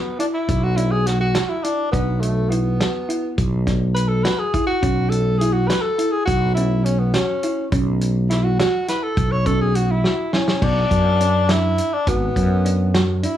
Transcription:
Already playing: B3 F#4
0.19 D4 E4, closed hi-hat
0.34 E4
0.49 B1, kick, closed hi-hat
0.64 F#4
0.77 D4 E4, closed hi-hat
0.91 G#4
1.07 F#4, snare, closed hi-hat
1.21 F#4
1.35 F#4, snare, closed hi-hat
1.49 E4
1.63 D4 E4, closed hi-hat
1.92 B1 B3 D4, kick, closed hi-hat
2.21 A3, closed hi-hat
2.50 B3 E4, closed hi-hat
2.80 F#4, snare, closed hi-hat
3.09 E4, closed hi-hat
3.38 B1, kick, closed hi-hat
3.67 D4, kick, snare, closed hi-hat
3.95 B4, closed hi-hat
4.08 A4
4.23 F#4 B4, snare, closed hi-hat
4.39 G#4
4.54 E4, kick, closed hi-hat
4.67 F#4
4.82 B1 C#4, kick, closed hi-hat
5.09 A4, closed hi-hat
5.38 E4 G#4, closed hi-hat
5.53 F#4
5.68 F#4 B4, snare, closed hi-hat
5.81 A4
5.99 E4, closed hi-hat
6.11 G#4
6.25 B1 F#4, kick, closed hi-hat
6.54 C#4 E4, closed hi-hat
6.84 C#4, closed hi-hat
6.99 B3
7.14 C#4 F#4, snare, closed hi-hat
7.43 E4, closed hi-hat
7.72 B1 C#4, kick, closed hi-hat
8.01 closed hi-hat
8.29 E4, snare, closed hi-hat
8.44 F#4
8.59 F#4, snare, closed hi-hat
8.88 E4 B4, snare, closed hi-hat
9.03 A4
9.17 B1, kick, closed hi-hat
9.32 C#5
9.46 C#4 A4, kick, closed hi-hat
9.61 G#4
9.75 F#4, closed hi-hat
9.91 E4
10.04 F#4, snare
10.33 C#4 E4, snare
10.48 snare
10.62 B1 B3 D4, kick, crash
10.91 F#2, kick, closed hi-hat
11.20 C#4, closed hi-hat
11.49 D4 E4, snare, closed hi-hat
11.78 closed hi-hat
11.93 D4
12.07 G#1 B3 F#4, kick, closed hi-hat
12.36 F#2, kick, closed hi-hat
12.65 D4, closed hi-hat
12.94 F#4, snare, closed hi-hat
13.23 D4 E4, closed hi-hat

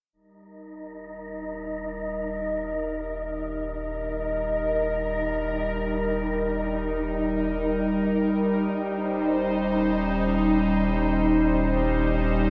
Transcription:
0.13 D#1 G3 D#4 A#4 D#5
8.70 D#1 C#4 C5

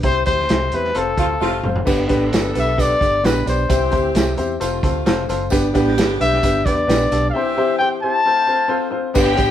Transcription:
0.03 C2 C4 E4 G4 C5, kick, closed hi-hat
0.26 D2 C4 E4 G4 C5, kick, closed hi-hat
0.40 snare
0.49 C2 C4 E4 G4 C5, snare, closed hi-hat
0.72 E2 C4 E4 G4 B4 C5, closed hi-hat
0.84 snare
0.94 F1 C4 F4 A4 C5, closed hi-hat
1.17 D2 C3 A3 C4 F4 A4 C5, kick, closed hi-hat
1.40 F1 C3 A3 C4 F4 A4 C5, snare
1.64 F#1 C4 F4 A4 C5, mid tom
1.76 floor tom
1.85 G1 D3 B3 D4 G4 A4 B4, kick, crash, tambourine
2.08 A1 B3 D4 G4 B4, kick, closed hi-hat, tambourine
2.32 G1 B3 D4 G4 B4, snare, closed hi-hat, tambourine
2.54 B1 B3 D4 G4 B4, closed hi-hat, tambourine
2.59 E5
2.77 B3 D4 G4 B4 D5, kick, closed hi-hat, tambourine
3.00 G1 B3 D4 G4 B4, kick, closed hi-hat, tambourine
3.23 A#1 B3 D4 G4 B4, snare, closed hi-hat, tambourine
3.46 B1 B3 D4 G4 C5 D5, closed hi-hat, tambourine
3.69 C2 E3 C4 E4 G4 C5, kick, closed hi-hat, tambourine
3.91 D2 C4 E4 G4 C5, kick, closed hi-hat
3.95 tambourine
4.15 C2 C4 E4 G4 C5, snare, closed hi-hat, tambourine
4.37 E2 C4 E4 G4 C5, closed hi-hat, tambourine
4.60 F1 C3 A3 C4 F4 A4 C5, closed hi-hat, tambourine
4.83 D2 C4 F4 A4 C5, kick, closed hi-hat, tambourine
5.05 F1 C4 F4 A4 C5, snare, closed hi-hat, tambourine
5.28 F#1 C4 F4 A4 C5, closed hi-hat, tambourine
5.50 G1 D3 B3 D4 G4 B4, kick, closed hi-hat, tambourine
5.74 A1 B3 D4 G4 B4, kick, snare, closed hi-hat, tambourine
5.88 snare
5.97 G1 B3 D4 G4 B4, snare, closed hi-hat, tambourine
6.19 B1 B3 D4 G4 B4 E5, closed hi-hat, tambourine
6.33 snare
6.43 G1 B3 D4 G4 B4, kick, closed hi-hat, tambourine
6.65 E2 B3 D4 G4 B4 D5, kick, closed hi-hat, tambourine
6.87 A#1 B3 D4 G4 B4, snare, closed hi-hat, tambourine
7.11 B1 B3 D4 G4 A4, closed hi-hat, tambourine
7.30 E3 G4 E5 F5
7.34 C4 E4 G4 C5
7.57 C4 E4 G4 C5
7.78 C4 E4 G4 C5 G5
8.02 C4 E4 G4 C5 A5
8.25 A3 C4 F4 A4 C5
8.47 C4 F4 A4 C5
8.68 C4 F4 A4 C5
8.90 C4 F4 A4 C5
9.14 G1 B3 D4 G4 B4 G5, kick, crash, tambourine
9.36 A1 B3 D4 G4 B4, kick, closed hi-hat, tambourine

